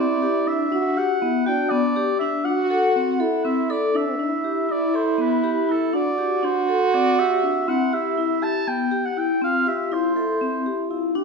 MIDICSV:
0, 0, Header, 1, 4, 480
1, 0, Start_track
1, 0, Key_signature, 1, "major"
1, 0, Tempo, 496689
1, 699, Time_signature, 7, 3, 24, 8
1, 10865, End_track
2, 0, Start_track
2, 0, Title_t, "Oboe"
2, 0, Program_c, 0, 68
2, 0, Note_on_c, 0, 74, 86
2, 459, Note_on_c, 0, 76, 95
2, 474, Note_off_c, 0, 74, 0
2, 942, Note_on_c, 0, 78, 81
2, 957, Note_off_c, 0, 76, 0
2, 1405, Note_off_c, 0, 78, 0
2, 1410, Note_on_c, 0, 79, 94
2, 1641, Note_on_c, 0, 74, 91
2, 1656, Note_off_c, 0, 79, 0
2, 2114, Note_off_c, 0, 74, 0
2, 2120, Note_on_c, 0, 76, 89
2, 2366, Note_on_c, 0, 78, 88
2, 2380, Note_off_c, 0, 76, 0
2, 3328, Note_off_c, 0, 78, 0
2, 3334, Note_on_c, 0, 76, 77
2, 3581, Note_on_c, 0, 74, 81
2, 3595, Note_off_c, 0, 76, 0
2, 3828, Note_on_c, 0, 76, 89
2, 3843, Note_off_c, 0, 74, 0
2, 4556, Note_on_c, 0, 74, 77
2, 4570, Note_off_c, 0, 76, 0
2, 4792, Note_on_c, 0, 72, 70
2, 4806, Note_off_c, 0, 74, 0
2, 5033, Note_on_c, 0, 71, 70
2, 5047, Note_off_c, 0, 72, 0
2, 5521, Note_on_c, 0, 69, 67
2, 5536, Note_off_c, 0, 71, 0
2, 5741, Note_off_c, 0, 69, 0
2, 5747, Note_on_c, 0, 74, 87
2, 6232, Note_on_c, 0, 72, 75
2, 6246, Note_off_c, 0, 74, 0
2, 6710, Note_on_c, 0, 74, 85
2, 6724, Note_off_c, 0, 72, 0
2, 6950, Note_on_c, 0, 76, 93
2, 6964, Note_off_c, 0, 74, 0
2, 7430, Note_on_c, 0, 78, 95
2, 7444, Note_off_c, 0, 76, 0
2, 7672, Note_on_c, 0, 76, 84
2, 7686, Note_off_c, 0, 78, 0
2, 8149, Note_on_c, 0, 81, 99
2, 8164, Note_off_c, 0, 76, 0
2, 8389, Note_on_c, 0, 79, 90
2, 8403, Note_off_c, 0, 81, 0
2, 8749, Note_on_c, 0, 78, 84
2, 8764, Note_off_c, 0, 79, 0
2, 8873, Note_on_c, 0, 79, 92
2, 8887, Note_off_c, 0, 78, 0
2, 9106, Note_off_c, 0, 79, 0
2, 9121, Note_on_c, 0, 77, 96
2, 9355, Note_on_c, 0, 76, 76
2, 9369, Note_off_c, 0, 77, 0
2, 9602, Note_on_c, 0, 72, 72
2, 9616, Note_off_c, 0, 76, 0
2, 10552, Note_off_c, 0, 72, 0
2, 10865, End_track
3, 0, Start_track
3, 0, Title_t, "French horn"
3, 0, Program_c, 1, 60
3, 0, Note_on_c, 1, 64, 93
3, 686, Note_off_c, 1, 64, 0
3, 692, Note_on_c, 1, 66, 101
3, 1190, Note_on_c, 1, 64, 84
3, 1204, Note_off_c, 1, 66, 0
3, 1437, Note_on_c, 1, 62, 78
3, 1451, Note_off_c, 1, 64, 0
3, 2127, Note_off_c, 1, 62, 0
3, 2374, Note_on_c, 1, 66, 115
3, 3099, Note_on_c, 1, 64, 92
3, 3114, Note_off_c, 1, 66, 0
3, 3814, Note_off_c, 1, 64, 0
3, 3820, Note_on_c, 1, 62, 65
3, 4041, Note_off_c, 1, 62, 0
3, 4051, Note_on_c, 1, 64, 96
3, 5738, Note_on_c, 1, 66, 120
3, 5752, Note_off_c, 1, 64, 0
3, 7426, Note_on_c, 1, 64, 89
3, 7440, Note_off_c, 1, 66, 0
3, 8844, Note_off_c, 1, 64, 0
3, 9099, Note_on_c, 1, 65, 85
3, 9781, Note_off_c, 1, 65, 0
3, 9822, Note_on_c, 1, 64, 76
3, 10537, Note_on_c, 1, 65, 70
3, 10551, Note_off_c, 1, 64, 0
3, 10788, Note_on_c, 1, 67, 92
3, 10803, Note_off_c, 1, 65, 0
3, 10865, Note_off_c, 1, 67, 0
3, 10865, End_track
4, 0, Start_track
4, 0, Title_t, "Vibraphone"
4, 0, Program_c, 2, 11
4, 0, Note_on_c, 2, 60, 82
4, 189, Note_off_c, 2, 60, 0
4, 216, Note_on_c, 2, 67, 72
4, 427, Note_off_c, 2, 67, 0
4, 454, Note_on_c, 2, 62, 69
4, 665, Note_off_c, 2, 62, 0
4, 696, Note_on_c, 2, 62, 85
4, 907, Note_off_c, 2, 62, 0
4, 937, Note_on_c, 2, 67, 74
4, 1147, Note_off_c, 2, 67, 0
4, 1179, Note_on_c, 2, 59, 78
4, 1388, Note_off_c, 2, 59, 0
4, 1414, Note_on_c, 2, 66, 73
4, 1625, Note_off_c, 2, 66, 0
4, 1653, Note_on_c, 2, 59, 80
4, 1864, Note_off_c, 2, 59, 0
4, 1896, Note_on_c, 2, 67, 82
4, 2106, Note_off_c, 2, 67, 0
4, 2136, Note_on_c, 2, 62, 74
4, 2346, Note_off_c, 2, 62, 0
4, 2371, Note_on_c, 2, 62, 82
4, 2583, Note_off_c, 2, 62, 0
4, 2613, Note_on_c, 2, 69, 69
4, 2824, Note_off_c, 2, 69, 0
4, 2859, Note_on_c, 2, 60, 73
4, 3067, Note_off_c, 2, 60, 0
4, 3092, Note_on_c, 2, 69, 69
4, 3303, Note_off_c, 2, 69, 0
4, 3330, Note_on_c, 2, 60, 74
4, 3542, Note_off_c, 2, 60, 0
4, 3576, Note_on_c, 2, 69, 79
4, 3785, Note_off_c, 2, 69, 0
4, 3815, Note_on_c, 2, 62, 74
4, 4025, Note_off_c, 2, 62, 0
4, 4055, Note_on_c, 2, 62, 67
4, 4265, Note_off_c, 2, 62, 0
4, 4295, Note_on_c, 2, 67, 59
4, 4505, Note_off_c, 2, 67, 0
4, 4531, Note_on_c, 2, 64, 66
4, 4743, Note_off_c, 2, 64, 0
4, 4773, Note_on_c, 2, 69, 61
4, 4984, Note_off_c, 2, 69, 0
4, 5008, Note_on_c, 2, 59, 71
4, 5221, Note_off_c, 2, 59, 0
4, 5254, Note_on_c, 2, 67, 71
4, 5464, Note_off_c, 2, 67, 0
4, 5498, Note_on_c, 2, 64, 65
4, 5706, Note_off_c, 2, 64, 0
4, 5734, Note_on_c, 2, 62, 70
4, 5945, Note_off_c, 2, 62, 0
4, 5974, Note_on_c, 2, 67, 61
4, 6185, Note_off_c, 2, 67, 0
4, 6214, Note_on_c, 2, 62, 72
4, 6425, Note_off_c, 2, 62, 0
4, 6462, Note_on_c, 2, 69, 70
4, 6669, Note_off_c, 2, 69, 0
4, 6706, Note_on_c, 2, 60, 70
4, 6912, Note_off_c, 2, 60, 0
4, 6947, Note_on_c, 2, 67, 70
4, 7152, Note_off_c, 2, 67, 0
4, 7185, Note_on_c, 2, 62, 59
4, 7391, Note_off_c, 2, 62, 0
4, 7423, Note_on_c, 2, 60, 80
4, 7630, Note_off_c, 2, 60, 0
4, 7662, Note_on_c, 2, 67, 62
4, 7870, Note_off_c, 2, 67, 0
4, 7902, Note_on_c, 2, 64, 71
4, 8110, Note_off_c, 2, 64, 0
4, 8137, Note_on_c, 2, 67, 68
4, 8347, Note_off_c, 2, 67, 0
4, 8381, Note_on_c, 2, 59, 71
4, 8590, Note_off_c, 2, 59, 0
4, 8616, Note_on_c, 2, 67, 70
4, 8827, Note_off_c, 2, 67, 0
4, 8861, Note_on_c, 2, 64, 66
4, 9070, Note_off_c, 2, 64, 0
4, 9099, Note_on_c, 2, 60, 73
4, 9309, Note_off_c, 2, 60, 0
4, 9338, Note_on_c, 2, 67, 67
4, 9549, Note_off_c, 2, 67, 0
4, 9584, Note_on_c, 2, 64, 71
4, 9792, Note_off_c, 2, 64, 0
4, 9823, Note_on_c, 2, 69, 60
4, 10032, Note_off_c, 2, 69, 0
4, 10063, Note_on_c, 2, 60, 71
4, 10272, Note_off_c, 2, 60, 0
4, 10304, Note_on_c, 2, 67, 64
4, 10512, Note_off_c, 2, 67, 0
4, 10540, Note_on_c, 2, 64, 61
4, 10751, Note_off_c, 2, 64, 0
4, 10777, Note_on_c, 2, 62, 76
4, 10865, Note_off_c, 2, 62, 0
4, 10865, End_track
0, 0, End_of_file